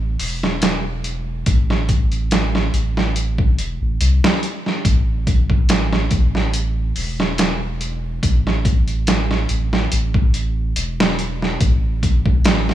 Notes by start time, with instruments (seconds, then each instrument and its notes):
Already playing: sub bass A1
0.20 sub bass E1, open hi-hat
0.43 snare
0.62 snare, closed hi-hat
1.04 closed hi-hat
1.46 sub bass A1, kick, closed hi-hat
1.70 snare
1.89 kick, closed hi-hat
2.12 closed hi-hat
2.31 snare, closed hi-hat
2.55 snare
2.73 sub bass A1, closed hi-hat
2.97 snare
3.16 closed hi-hat
3.38 kick
3.58 sub bass E1, closed hi-hat
3.81 sub bass A1
4.01 sub bass C2, closed hi-hat
4.24 snare
4.43 closed hi-hat
4.66 snare
4.85 sub bass A1, kick, closed hi-hat
5.27 kick, closed hi-hat
5.50 kick
5.69 snare, closed hi-hat
5.93 snare
6.11 sub bass A1, kick, closed hi-hat
6.35 snare
6.54 closed hi-hat
6.96 sub bass E1, open hi-hat
7.20 snare
7.38 snare, closed hi-hat
7.81 closed hi-hat
8.23 sub bass A1, kick, closed hi-hat
8.47 snare
8.65 kick, closed hi-hat
8.88 closed hi-hat
9.07 snare, closed hi-hat
9.31 snare
9.49 sub bass A1, closed hi-hat
9.73 snare
9.92 sub bass A1, closed hi-hat
10.14 kick
10.34 closed hi-hat
10.76 sub bass E1, closed hi-hat
11.00 snare
11.19 closed hi-hat
11.42 snare
11.61 sub bass A1, kick, closed hi-hat
12.03 kick, closed hi-hat
12.26 kick
12.45 snare, closed hi-hat
12.69 snare